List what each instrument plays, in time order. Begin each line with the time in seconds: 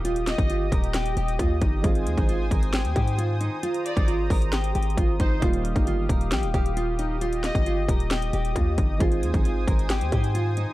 Already playing: 808-style bass D#1, felt piano D#3 G3 A#3 F4, analog synth pad G4 D#6
0.05 nylon-string guitar F4, analog synth pad D#5, closed hi-hat
0.16 closed hi-hat
0.27 violin section D#5, snare, closed hi-hat
0.38 808-style bass G1, nylon-string guitar D#4, kick, closed hi-hat
0.50 nylon-string guitar F4, closed hi-hat
0.72 808-style bass D#1, nylon-string guitar A#4, kick, closed hi-hat
0.84 closed hi-hat
0.94 nylon-string guitar G4, snare, closed hi-hat
1.06 closed hi-hat
1.17 808-style bass D#1, nylon-string guitar G4, closed hi-hat
1.28 closed hi-hat
1.39 808-style bass D#2, nylon-string guitar F4, kick, closed hi-hat
1.61 808-style bass G1, nylon-string guitar D#4, kick, closed hi-hat
1.81 808-style bass G#1, felt piano D#3 G#3 C4, nylon-string guitar F4, analog synth pad C5 G#5, kick, closed hi-hat
1.86 felt piano G#4
1.95 closed hi-hat
2.06 808-style bass D#2, closed hi-hat
2.18 808-style bass G#1, nylon-string guitar D#4, kick, closed hi-hat
2.29 nylon-string guitar F4, closed hi-hat
2.51 808-style bass G#1, nylon-string guitar A#4, kick, closed hi-hat
2.63 closed hi-hat
2.73 nylon-string guitar G4, snare, closed hi-hat
2.85 808-style bass D#2, closed hi-hat
2.96 808-style bass G#2, nylon-string guitar G4, kick, closed hi-hat
3.08 closed hi-hat
3.18 nylon-string guitar F4, closed hi-hat
3.41 nylon-string guitar D#4, closed hi-hat
3.63 nylon-string guitar F4, analog synth pad A#5, closed hi-hat
3.74 closed hi-hat
3.85 violin section D5, closed hi-hat
3.96 808-style bass G#1, nylon-string guitar D#4, kick, closed hi-hat
4.08 nylon-string guitar F4, closed hi-hat
4.30 808-style bass G#1, nylon-string guitar A#4, kick, open hi-hat
4.42 closed hi-hat
4.52 nylon-string guitar G4, snare, closed hi-hat
4.64 closed hi-hat
4.75 808-style bass G#1, nylon-string guitar G4, closed hi-hat
4.83 closed hi-hat
4.90 closed hi-hat
4.97 808-style bass G#1, nylon-string guitar F4, kick, closed hi-hat
5.20 808-style bass G#1, nylon-string guitar D#4, violin section C5, kick, closed hi-hat
5.40 808-style bass D#1, felt piano D#3 G3 A#3, nylon-string guitar F4, analog synth pad G4 F5, kick, closed hi-hat
5.44 felt piano F4
5.53 closed hi-hat
5.65 closed hi-hat
5.76 808-style bass G1, nylon-string guitar D#4, kick, closed hi-hat
5.87 nylon-string guitar F4, closed hi-hat
6.09 808-style bass D#1, nylon-string guitar A#4, kick, closed hi-hat
6.21 closed hi-hat
6.32 808-style bass A#1, nylon-string guitar G4, snare, closed hi-hat
6.43 808-style bass D#1, closed hi-hat
6.54 808-style bass D#1, nylon-string guitar G4, kick, closed hi-hat
6.66 closed hi-hat
6.77 nylon-string guitar F4, closed hi-hat
6.99 nylon-string guitar D#4, closed hi-hat
7.21 nylon-string guitar F4, analog synth pad D#5, closed hi-hat
7.33 closed hi-hat
7.44 violin section D#5, snare, closed hi-hat
7.55 808-style bass G1, nylon-string guitar D#4, kick, closed hi-hat
7.66 nylon-string guitar F4, closed hi-hat
7.88 808-style bass D#1, nylon-string guitar A#4, kick, closed hi-hat
8.00 closed hi-hat
8.11 nylon-string guitar G4, snare, closed hi-hat
8.22 closed hi-hat
8.33 808-style bass D#1, nylon-string guitar G4, closed hi-hat
8.45 closed hi-hat
8.56 808-style bass D#2, nylon-string guitar F4, kick, closed hi-hat
8.78 808-style bass G1, nylon-string guitar D#4, kick, closed hi-hat
8.98 808-style bass G#1, felt piano D#3 G#3 C4, nylon-string guitar F4, analog synth pad C5 G#5 D#6, kick, closed hi-hat
9.02 felt piano G#4
9.12 closed hi-hat
9.23 808-style bass D#2, closed hi-hat
9.34 808-style bass G#1, nylon-string guitar D#4, kick, closed hi-hat
9.45 nylon-string guitar F4, closed hi-hat
9.68 808-style bass G#1, nylon-string guitar A#4, kick, closed hi-hat
9.79 closed hi-hat
9.90 nylon-string guitar G4, snare, closed hi-hat
10.01 808-style bass D#2, closed hi-hat
10.12 808-style bass G#2, nylon-string guitar G4, kick, closed hi-hat
10.24 closed hi-hat
10.35 nylon-string guitar F4, closed hi-hat
10.57 nylon-string guitar D#4, closed hi-hat